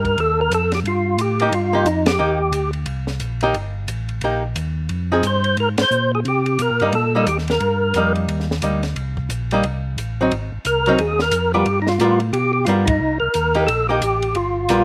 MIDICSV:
0, 0, Header, 1, 5, 480
1, 0, Start_track
1, 0, Tempo, 337838
1, 1206, Time_signature, 4, 2, 24, 8
1, 21089, End_track
2, 0, Start_track
2, 0, Title_t, "Tonewheel organ"
2, 0, Program_c, 0, 16
2, 0, Note_on_c, 0, 70, 88
2, 287, Note_on_c, 0, 69, 89
2, 288, Note_off_c, 0, 70, 0
2, 571, Note_off_c, 0, 69, 0
2, 585, Note_on_c, 0, 70, 95
2, 752, Note_off_c, 0, 70, 0
2, 773, Note_on_c, 0, 69, 93
2, 1027, Note_off_c, 0, 69, 0
2, 1060, Note_on_c, 0, 67, 91
2, 1135, Note_off_c, 0, 67, 0
2, 1244, Note_on_c, 0, 65, 86
2, 1719, Note_off_c, 0, 65, 0
2, 1723, Note_on_c, 0, 67, 76
2, 2116, Note_on_c, 0, 63, 62
2, 2120, Note_off_c, 0, 67, 0
2, 2180, Note_off_c, 0, 63, 0
2, 2192, Note_on_c, 0, 65, 77
2, 2651, Note_on_c, 0, 63, 82
2, 2674, Note_off_c, 0, 65, 0
2, 2925, Note_off_c, 0, 63, 0
2, 2946, Note_on_c, 0, 67, 83
2, 3849, Note_off_c, 0, 67, 0
2, 7485, Note_on_c, 0, 72, 88
2, 7916, Note_off_c, 0, 72, 0
2, 7959, Note_on_c, 0, 70, 88
2, 8086, Note_off_c, 0, 70, 0
2, 8258, Note_on_c, 0, 72, 120
2, 8690, Note_off_c, 0, 72, 0
2, 8736, Note_on_c, 0, 68, 83
2, 8812, Note_off_c, 0, 68, 0
2, 8923, Note_on_c, 0, 67, 84
2, 9402, Note_off_c, 0, 67, 0
2, 9404, Note_on_c, 0, 70, 79
2, 9836, Note_off_c, 0, 70, 0
2, 9876, Note_on_c, 0, 69, 81
2, 10311, Note_off_c, 0, 69, 0
2, 10350, Note_on_c, 0, 67, 80
2, 10479, Note_off_c, 0, 67, 0
2, 10658, Note_on_c, 0, 70, 84
2, 11547, Note_off_c, 0, 70, 0
2, 15152, Note_on_c, 0, 70, 88
2, 15626, Note_on_c, 0, 68, 93
2, 15636, Note_off_c, 0, 70, 0
2, 15923, Note_off_c, 0, 68, 0
2, 15937, Note_on_c, 0, 70, 106
2, 16369, Note_off_c, 0, 70, 0
2, 16399, Note_on_c, 0, 67, 91
2, 16760, Note_off_c, 0, 67, 0
2, 16792, Note_on_c, 0, 63, 64
2, 16886, Note_on_c, 0, 65, 90
2, 16891, Note_off_c, 0, 63, 0
2, 17323, Note_off_c, 0, 65, 0
2, 17519, Note_on_c, 0, 67, 88
2, 17786, Note_off_c, 0, 67, 0
2, 17803, Note_on_c, 0, 67, 93
2, 17971, Note_on_c, 0, 65, 85
2, 17985, Note_off_c, 0, 67, 0
2, 18113, Note_off_c, 0, 65, 0
2, 18265, Note_on_c, 0, 63, 89
2, 18730, Note_off_c, 0, 63, 0
2, 18751, Note_on_c, 0, 70, 78
2, 19384, Note_off_c, 0, 70, 0
2, 19418, Note_on_c, 0, 69, 82
2, 19707, Note_off_c, 0, 69, 0
2, 19733, Note_on_c, 0, 67, 87
2, 20396, Note_on_c, 0, 65, 76
2, 20422, Note_off_c, 0, 67, 0
2, 21089, Note_off_c, 0, 65, 0
2, 21089, End_track
3, 0, Start_track
3, 0, Title_t, "Hollow-body jazz guitar"
3, 0, Program_c, 1, 26
3, 0, Note_on_c, 1, 58, 52
3, 0, Note_on_c, 1, 63, 51
3, 0, Note_on_c, 1, 67, 62
3, 621, Note_off_c, 1, 58, 0
3, 625, Note_off_c, 1, 63, 0
3, 630, Note_off_c, 1, 67, 0
3, 1999, Note_on_c, 1, 58, 61
3, 2013, Note_on_c, 1, 67, 72
3, 2015, Note_on_c, 1, 63, 73
3, 2156, Note_off_c, 1, 58, 0
3, 2164, Note_off_c, 1, 67, 0
3, 2165, Note_off_c, 1, 63, 0
3, 2461, Note_on_c, 1, 58, 64
3, 2480, Note_on_c, 1, 63, 68
3, 2480, Note_on_c, 1, 67, 63
3, 2627, Note_off_c, 1, 58, 0
3, 2637, Note_off_c, 1, 63, 0
3, 2637, Note_off_c, 1, 67, 0
3, 3110, Note_on_c, 1, 63, 70
3, 3111, Note_on_c, 1, 58, 60
3, 3121, Note_on_c, 1, 67, 61
3, 3385, Note_off_c, 1, 63, 0
3, 3386, Note_off_c, 1, 58, 0
3, 3391, Note_off_c, 1, 67, 0
3, 4869, Note_on_c, 1, 58, 69
3, 4869, Note_on_c, 1, 63, 80
3, 4880, Note_on_c, 1, 67, 76
3, 5033, Note_off_c, 1, 58, 0
3, 5033, Note_off_c, 1, 63, 0
3, 5038, Note_off_c, 1, 67, 0
3, 6024, Note_on_c, 1, 58, 54
3, 6026, Note_on_c, 1, 63, 54
3, 6034, Note_on_c, 1, 67, 50
3, 6283, Note_off_c, 1, 58, 0
3, 6285, Note_off_c, 1, 63, 0
3, 6289, Note_off_c, 1, 67, 0
3, 7271, Note_on_c, 1, 53, 60
3, 7271, Note_on_c, 1, 63, 61
3, 7273, Note_on_c, 1, 60, 56
3, 7289, Note_on_c, 1, 68, 62
3, 7435, Note_off_c, 1, 53, 0
3, 7435, Note_off_c, 1, 63, 0
3, 7436, Note_off_c, 1, 60, 0
3, 7444, Note_off_c, 1, 68, 0
3, 9681, Note_on_c, 1, 55, 64
3, 9689, Note_on_c, 1, 58, 69
3, 9693, Note_on_c, 1, 63, 69
3, 9840, Note_off_c, 1, 55, 0
3, 9844, Note_off_c, 1, 58, 0
3, 9846, Note_off_c, 1, 63, 0
3, 10158, Note_on_c, 1, 55, 57
3, 10170, Note_on_c, 1, 58, 70
3, 10176, Note_on_c, 1, 63, 75
3, 10319, Note_off_c, 1, 55, 0
3, 10325, Note_off_c, 1, 58, 0
3, 10328, Note_off_c, 1, 63, 0
3, 11310, Note_on_c, 1, 55, 54
3, 11316, Note_on_c, 1, 58, 54
3, 11325, Note_on_c, 1, 63, 60
3, 12018, Note_off_c, 1, 55, 0
3, 12021, Note_off_c, 1, 58, 0
3, 12026, Note_off_c, 1, 63, 0
3, 12258, Note_on_c, 1, 55, 51
3, 12270, Note_on_c, 1, 58, 48
3, 12270, Note_on_c, 1, 63, 51
3, 12521, Note_off_c, 1, 55, 0
3, 12527, Note_off_c, 1, 58, 0
3, 12527, Note_off_c, 1, 63, 0
3, 13531, Note_on_c, 1, 55, 67
3, 13545, Note_on_c, 1, 58, 70
3, 13550, Note_on_c, 1, 63, 68
3, 13685, Note_off_c, 1, 55, 0
3, 13692, Note_off_c, 1, 58, 0
3, 13694, Note_off_c, 1, 63, 0
3, 14503, Note_on_c, 1, 60, 67
3, 14504, Note_on_c, 1, 54, 61
3, 14523, Note_on_c, 1, 63, 65
3, 14651, Note_off_c, 1, 54, 0
3, 14651, Note_off_c, 1, 60, 0
3, 14661, Note_off_c, 1, 63, 0
3, 15446, Note_on_c, 1, 54, 77
3, 15458, Note_on_c, 1, 60, 75
3, 15468, Note_on_c, 1, 63, 83
3, 15602, Note_off_c, 1, 54, 0
3, 15608, Note_off_c, 1, 60, 0
3, 15613, Note_off_c, 1, 63, 0
3, 16395, Note_on_c, 1, 55, 60
3, 16395, Note_on_c, 1, 59, 63
3, 16399, Note_on_c, 1, 65, 60
3, 16408, Note_on_c, 1, 70, 65
3, 16556, Note_off_c, 1, 59, 0
3, 16557, Note_off_c, 1, 55, 0
3, 16558, Note_off_c, 1, 65, 0
3, 16563, Note_off_c, 1, 70, 0
3, 17056, Note_on_c, 1, 59, 65
3, 17059, Note_on_c, 1, 55, 59
3, 17063, Note_on_c, 1, 70, 62
3, 17069, Note_on_c, 1, 65, 64
3, 17319, Note_off_c, 1, 59, 0
3, 17321, Note_off_c, 1, 55, 0
3, 17323, Note_off_c, 1, 70, 0
3, 17326, Note_off_c, 1, 65, 0
3, 18010, Note_on_c, 1, 55, 58
3, 18018, Note_on_c, 1, 59, 52
3, 18026, Note_on_c, 1, 65, 56
3, 18031, Note_on_c, 1, 70, 61
3, 18276, Note_off_c, 1, 55, 0
3, 18280, Note_off_c, 1, 59, 0
3, 18284, Note_off_c, 1, 65, 0
3, 18286, Note_off_c, 1, 70, 0
3, 19252, Note_on_c, 1, 58, 68
3, 19254, Note_on_c, 1, 63, 71
3, 19266, Note_on_c, 1, 67, 63
3, 19424, Note_off_c, 1, 58, 0
3, 19424, Note_off_c, 1, 63, 0
3, 19431, Note_off_c, 1, 67, 0
3, 19737, Note_on_c, 1, 58, 62
3, 19754, Note_on_c, 1, 67, 69
3, 19757, Note_on_c, 1, 63, 64
3, 19906, Note_off_c, 1, 58, 0
3, 19914, Note_off_c, 1, 67, 0
3, 19916, Note_off_c, 1, 63, 0
3, 20879, Note_on_c, 1, 55, 64
3, 20883, Note_on_c, 1, 65, 69
3, 20887, Note_on_c, 1, 59, 59
3, 20888, Note_on_c, 1, 70, 66
3, 21089, Note_off_c, 1, 55, 0
3, 21089, Note_off_c, 1, 59, 0
3, 21089, Note_off_c, 1, 65, 0
3, 21089, Note_off_c, 1, 70, 0
3, 21089, End_track
4, 0, Start_track
4, 0, Title_t, "Tonewheel organ"
4, 0, Program_c, 2, 16
4, 0, Note_on_c, 2, 43, 90
4, 234, Note_off_c, 2, 43, 0
4, 248, Note_on_c, 2, 39, 85
4, 712, Note_off_c, 2, 39, 0
4, 719, Note_on_c, 2, 41, 82
4, 1188, Note_off_c, 2, 41, 0
4, 1188, Note_on_c, 2, 43, 75
4, 1663, Note_off_c, 2, 43, 0
4, 1666, Note_on_c, 2, 45, 91
4, 2142, Note_off_c, 2, 45, 0
4, 2154, Note_on_c, 2, 43, 78
4, 2623, Note_on_c, 2, 41, 88
4, 2626, Note_off_c, 2, 43, 0
4, 3101, Note_off_c, 2, 41, 0
4, 3107, Note_on_c, 2, 39, 83
4, 3576, Note_on_c, 2, 38, 87
4, 3583, Note_off_c, 2, 39, 0
4, 4058, Note_off_c, 2, 38, 0
4, 4064, Note_on_c, 2, 36, 84
4, 4542, Note_off_c, 2, 36, 0
4, 4552, Note_on_c, 2, 34, 86
4, 5026, Note_off_c, 2, 34, 0
4, 5038, Note_on_c, 2, 31, 82
4, 5504, Note_on_c, 2, 33, 90
4, 5510, Note_off_c, 2, 31, 0
4, 5982, Note_off_c, 2, 33, 0
4, 5996, Note_on_c, 2, 34, 80
4, 6469, Note_off_c, 2, 34, 0
4, 6475, Note_on_c, 2, 39, 89
4, 6947, Note_on_c, 2, 41, 80
4, 6949, Note_off_c, 2, 39, 0
4, 7424, Note_off_c, 2, 41, 0
4, 7429, Note_on_c, 2, 43, 95
4, 7906, Note_off_c, 2, 43, 0
4, 7913, Note_on_c, 2, 44, 75
4, 8195, Note_off_c, 2, 44, 0
4, 8212, Note_on_c, 2, 44, 42
4, 8308, Note_off_c, 2, 44, 0
4, 8390, Note_on_c, 2, 46, 92
4, 8866, Note_off_c, 2, 46, 0
4, 8880, Note_on_c, 2, 48, 83
4, 9351, Note_off_c, 2, 48, 0
4, 9363, Note_on_c, 2, 47, 95
4, 9522, Note_off_c, 2, 47, 0
4, 9530, Note_on_c, 2, 46, 56
4, 9672, Note_on_c, 2, 43, 65
4, 9691, Note_off_c, 2, 46, 0
4, 9830, Note_off_c, 2, 43, 0
4, 9835, Note_on_c, 2, 46, 86
4, 10309, Note_off_c, 2, 46, 0
4, 10313, Note_on_c, 2, 39, 88
4, 10788, Note_off_c, 2, 39, 0
4, 10800, Note_on_c, 2, 43, 80
4, 11272, Note_off_c, 2, 43, 0
4, 11286, Note_on_c, 2, 41, 90
4, 11755, Note_off_c, 2, 41, 0
4, 11768, Note_on_c, 2, 39, 89
4, 12236, Note_off_c, 2, 39, 0
4, 12249, Note_on_c, 2, 38, 88
4, 12716, Note_off_c, 2, 38, 0
4, 12728, Note_on_c, 2, 36, 78
4, 13196, Note_off_c, 2, 36, 0
4, 13200, Note_on_c, 2, 34, 92
4, 13671, Note_off_c, 2, 34, 0
4, 13687, Note_on_c, 2, 36, 86
4, 14155, Note_off_c, 2, 36, 0
4, 14164, Note_on_c, 2, 33, 82
4, 14633, Note_off_c, 2, 33, 0
4, 14657, Note_on_c, 2, 32, 84
4, 14929, Note_off_c, 2, 32, 0
4, 14951, Note_on_c, 2, 32, 35
4, 15042, Note_off_c, 2, 32, 0
4, 15128, Note_on_c, 2, 36, 83
4, 15595, Note_off_c, 2, 36, 0
4, 15604, Note_on_c, 2, 39, 75
4, 16071, Note_on_c, 2, 41, 82
4, 16073, Note_off_c, 2, 39, 0
4, 16546, Note_off_c, 2, 41, 0
4, 16561, Note_on_c, 2, 43, 79
4, 17030, Note_on_c, 2, 45, 92
4, 17031, Note_off_c, 2, 43, 0
4, 17505, Note_off_c, 2, 45, 0
4, 17515, Note_on_c, 2, 47, 77
4, 17987, Note_off_c, 2, 47, 0
4, 18003, Note_on_c, 2, 43, 93
4, 18472, Note_off_c, 2, 43, 0
4, 18474, Note_on_c, 2, 36, 81
4, 18756, Note_off_c, 2, 36, 0
4, 18780, Note_on_c, 2, 36, 39
4, 18873, Note_off_c, 2, 36, 0
4, 18966, Note_on_c, 2, 39, 95
4, 19432, Note_off_c, 2, 39, 0
4, 19433, Note_on_c, 2, 34, 83
4, 19906, Note_off_c, 2, 34, 0
4, 19913, Note_on_c, 2, 33, 91
4, 20385, Note_off_c, 2, 33, 0
4, 20392, Note_on_c, 2, 31, 74
4, 20864, Note_off_c, 2, 31, 0
4, 20874, Note_on_c, 2, 34, 89
4, 21089, Note_off_c, 2, 34, 0
4, 21089, End_track
5, 0, Start_track
5, 0, Title_t, "Drums"
5, 68, Note_on_c, 9, 36, 47
5, 71, Note_on_c, 9, 51, 37
5, 210, Note_off_c, 9, 36, 0
5, 213, Note_off_c, 9, 51, 0
5, 253, Note_on_c, 9, 51, 54
5, 395, Note_off_c, 9, 51, 0
5, 732, Note_on_c, 9, 44, 55
5, 732, Note_on_c, 9, 51, 67
5, 874, Note_off_c, 9, 44, 0
5, 874, Note_off_c, 9, 51, 0
5, 1019, Note_on_c, 9, 51, 46
5, 1026, Note_on_c, 9, 38, 38
5, 1161, Note_off_c, 9, 51, 0
5, 1168, Note_off_c, 9, 38, 0
5, 1214, Note_on_c, 9, 51, 57
5, 1356, Note_off_c, 9, 51, 0
5, 1683, Note_on_c, 9, 44, 54
5, 1683, Note_on_c, 9, 51, 70
5, 1825, Note_off_c, 9, 44, 0
5, 1825, Note_off_c, 9, 51, 0
5, 1983, Note_on_c, 9, 51, 44
5, 2125, Note_off_c, 9, 51, 0
5, 2167, Note_on_c, 9, 51, 68
5, 2309, Note_off_c, 9, 51, 0
5, 2638, Note_on_c, 9, 44, 52
5, 2638, Note_on_c, 9, 51, 61
5, 2781, Note_off_c, 9, 44, 0
5, 2781, Note_off_c, 9, 51, 0
5, 2928, Note_on_c, 9, 51, 70
5, 2935, Note_on_c, 9, 38, 82
5, 3070, Note_off_c, 9, 51, 0
5, 3077, Note_off_c, 9, 38, 0
5, 3588, Note_on_c, 9, 44, 57
5, 3588, Note_on_c, 9, 51, 70
5, 3730, Note_off_c, 9, 44, 0
5, 3730, Note_off_c, 9, 51, 0
5, 3881, Note_on_c, 9, 51, 41
5, 4023, Note_off_c, 9, 51, 0
5, 4060, Note_on_c, 9, 51, 62
5, 4202, Note_off_c, 9, 51, 0
5, 4363, Note_on_c, 9, 38, 38
5, 4505, Note_off_c, 9, 38, 0
5, 4543, Note_on_c, 9, 44, 49
5, 4543, Note_on_c, 9, 51, 61
5, 4685, Note_off_c, 9, 44, 0
5, 4685, Note_off_c, 9, 51, 0
5, 4840, Note_on_c, 9, 51, 48
5, 4982, Note_off_c, 9, 51, 0
5, 5034, Note_on_c, 9, 51, 53
5, 5176, Note_off_c, 9, 51, 0
5, 5512, Note_on_c, 9, 44, 58
5, 5512, Note_on_c, 9, 51, 64
5, 5654, Note_off_c, 9, 44, 0
5, 5654, Note_off_c, 9, 51, 0
5, 5806, Note_on_c, 9, 51, 36
5, 5948, Note_off_c, 9, 51, 0
5, 5984, Note_on_c, 9, 51, 57
5, 6126, Note_off_c, 9, 51, 0
5, 6474, Note_on_c, 9, 44, 53
5, 6474, Note_on_c, 9, 51, 69
5, 6616, Note_off_c, 9, 44, 0
5, 6616, Note_off_c, 9, 51, 0
5, 6949, Note_on_c, 9, 51, 49
5, 7091, Note_off_c, 9, 51, 0
5, 7431, Note_on_c, 9, 44, 61
5, 7431, Note_on_c, 9, 51, 68
5, 7573, Note_off_c, 9, 44, 0
5, 7573, Note_off_c, 9, 51, 0
5, 7729, Note_on_c, 9, 51, 43
5, 7871, Note_off_c, 9, 51, 0
5, 7913, Note_on_c, 9, 51, 52
5, 8055, Note_off_c, 9, 51, 0
5, 8208, Note_on_c, 9, 51, 69
5, 8215, Note_on_c, 9, 38, 74
5, 8350, Note_off_c, 9, 51, 0
5, 8357, Note_off_c, 9, 38, 0
5, 8399, Note_on_c, 9, 44, 63
5, 8541, Note_off_c, 9, 44, 0
5, 8883, Note_on_c, 9, 51, 51
5, 9025, Note_off_c, 9, 51, 0
5, 9178, Note_on_c, 9, 51, 44
5, 9320, Note_off_c, 9, 51, 0
5, 9358, Note_on_c, 9, 44, 68
5, 9358, Note_on_c, 9, 51, 64
5, 9500, Note_off_c, 9, 44, 0
5, 9500, Note_off_c, 9, 51, 0
5, 9657, Note_on_c, 9, 51, 38
5, 9799, Note_off_c, 9, 51, 0
5, 9839, Note_on_c, 9, 51, 57
5, 9981, Note_off_c, 9, 51, 0
5, 10324, Note_on_c, 9, 44, 62
5, 10324, Note_on_c, 9, 51, 69
5, 10466, Note_off_c, 9, 44, 0
5, 10466, Note_off_c, 9, 51, 0
5, 10490, Note_on_c, 9, 38, 27
5, 10622, Note_on_c, 9, 51, 49
5, 10632, Note_off_c, 9, 38, 0
5, 10653, Note_on_c, 9, 38, 45
5, 10764, Note_off_c, 9, 51, 0
5, 10795, Note_off_c, 9, 38, 0
5, 10802, Note_on_c, 9, 51, 58
5, 10944, Note_off_c, 9, 51, 0
5, 11279, Note_on_c, 9, 44, 60
5, 11279, Note_on_c, 9, 51, 61
5, 11421, Note_off_c, 9, 44, 0
5, 11421, Note_off_c, 9, 51, 0
5, 11586, Note_on_c, 9, 51, 41
5, 11728, Note_off_c, 9, 51, 0
5, 11772, Note_on_c, 9, 51, 63
5, 11914, Note_off_c, 9, 51, 0
5, 11934, Note_on_c, 9, 38, 26
5, 12076, Note_off_c, 9, 38, 0
5, 12094, Note_on_c, 9, 38, 43
5, 12236, Note_off_c, 9, 38, 0
5, 12246, Note_on_c, 9, 44, 51
5, 12246, Note_on_c, 9, 51, 70
5, 12388, Note_off_c, 9, 44, 0
5, 12388, Note_off_c, 9, 51, 0
5, 12545, Note_on_c, 9, 51, 42
5, 12552, Note_on_c, 9, 38, 34
5, 12687, Note_off_c, 9, 51, 0
5, 12694, Note_off_c, 9, 38, 0
5, 12731, Note_on_c, 9, 51, 56
5, 12873, Note_off_c, 9, 51, 0
5, 13029, Note_on_c, 9, 36, 59
5, 13171, Note_off_c, 9, 36, 0
5, 13209, Note_on_c, 9, 44, 68
5, 13209, Note_on_c, 9, 51, 57
5, 13351, Note_off_c, 9, 44, 0
5, 13351, Note_off_c, 9, 51, 0
5, 13512, Note_on_c, 9, 51, 43
5, 13654, Note_off_c, 9, 51, 0
5, 13689, Note_on_c, 9, 51, 61
5, 13831, Note_off_c, 9, 51, 0
5, 14178, Note_on_c, 9, 44, 54
5, 14178, Note_on_c, 9, 51, 58
5, 14320, Note_off_c, 9, 44, 0
5, 14320, Note_off_c, 9, 51, 0
5, 14654, Note_on_c, 9, 51, 55
5, 14796, Note_off_c, 9, 51, 0
5, 15129, Note_on_c, 9, 44, 68
5, 15129, Note_on_c, 9, 51, 59
5, 15271, Note_off_c, 9, 44, 0
5, 15271, Note_off_c, 9, 51, 0
5, 15429, Note_on_c, 9, 51, 43
5, 15571, Note_off_c, 9, 51, 0
5, 15607, Note_on_c, 9, 51, 64
5, 15749, Note_off_c, 9, 51, 0
5, 15902, Note_on_c, 9, 38, 50
5, 16044, Note_off_c, 9, 38, 0
5, 16074, Note_on_c, 9, 44, 59
5, 16074, Note_on_c, 9, 51, 67
5, 16217, Note_off_c, 9, 44, 0
5, 16217, Note_off_c, 9, 51, 0
5, 16561, Note_on_c, 9, 51, 52
5, 16703, Note_off_c, 9, 51, 0
5, 16860, Note_on_c, 9, 38, 40
5, 17002, Note_off_c, 9, 38, 0
5, 17043, Note_on_c, 9, 44, 61
5, 17043, Note_on_c, 9, 51, 66
5, 17185, Note_off_c, 9, 44, 0
5, 17185, Note_off_c, 9, 51, 0
5, 17331, Note_on_c, 9, 51, 42
5, 17474, Note_off_c, 9, 51, 0
5, 17524, Note_on_c, 9, 51, 63
5, 17667, Note_off_c, 9, 51, 0
5, 17993, Note_on_c, 9, 44, 47
5, 17993, Note_on_c, 9, 51, 60
5, 18135, Note_off_c, 9, 44, 0
5, 18135, Note_off_c, 9, 51, 0
5, 18291, Note_on_c, 9, 51, 82
5, 18298, Note_on_c, 9, 36, 85
5, 18433, Note_off_c, 9, 51, 0
5, 18440, Note_off_c, 9, 36, 0
5, 18950, Note_on_c, 9, 44, 48
5, 18950, Note_on_c, 9, 51, 67
5, 19092, Note_off_c, 9, 44, 0
5, 19092, Note_off_c, 9, 51, 0
5, 19245, Note_on_c, 9, 51, 41
5, 19387, Note_off_c, 9, 51, 0
5, 19440, Note_on_c, 9, 51, 64
5, 19582, Note_off_c, 9, 51, 0
5, 19916, Note_on_c, 9, 44, 61
5, 19916, Note_on_c, 9, 51, 64
5, 20058, Note_off_c, 9, 44, 0
5, 20058, Note_off_c, 9, 51, 0
5, 20210, Note_on_c, 9, 51, 46
5, 20352, Note_off_c, 9, 51, 0
5, 20385, Note_on_c, 9, 51, 56
5, 20527, Note_off_c, 9, 51, 0
5, 20867, Note_on_c, 9, 44, 65
5, 20867, Note_on_c, 9, 51, 71
5, 21009, Note_off_c, 9, 44, 0
5, 21009, Note_off_c, 9, 51, 0
5, 21089, End_track
0, 0, End_of_file